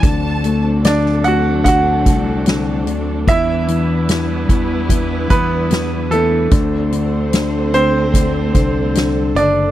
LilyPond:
<<
  \new Staff \with { instrumentName = "Violin section" } { \time 4/4 \key d \mixolydian \tempo 4 = 74 a''8. r2. r16 | r1 | r1 | }
  \new Staff \with { instrumentName = "Grand piano" } { \time 4/4 \key d \mixolydian r4 <d' d''>8 <fis' fis''>8 <fis' fis''>4. r8 | <e' e''>4 r4. <b b'>4 <a a'>8~ | <a a'>4. <c' c''>2 <d' d''>8 | }
  \new Staff \with { instrumentName = "String section" } { \time 4/4 \key d \mixolydian <fis a c' d' a'>1 | <g b e' b'>1 | <a c' a' c''>1 | }
  \new Staff \with { instrumentName = "Felt piano" } { \clef bass \time 4/4 \key d \mixolydian d8 a8 d8 a8 d8 a8 d8 a8 | e8 e8 e8 e8 e8 e8 e8 e8 | d8 d8 d8 d8 d8 d8 d8 d8 | }
  \new Staff \with { instrumentName = "Fingered electric bass" } { \clef bass \time 4/4 \key d \mixolydian d,2~ d,8 c,4 d,8 | e,4. e,4 e,4. | d,2~ d,8 c,4 fis,,8 | }
  \new DrumStaff \with { instrumentName = "Drums" } \drummode { \time 4/4 <hh bd>8 hh8 <hh sn>16 sn16 hh8 <hh bd>8 <hh bd>8 <hh sn>8 hh8 | <hh bd>8 hh8 <hh sn>8 <hh bd>8 <hh bd>8 <hh bd>8 <hh sn>8 hh8 | <hh bd>8 hh8 <hh sn>8 hh8 <hh bd>8 <hh bd>8 <hh sn>8 hh8 | }
>>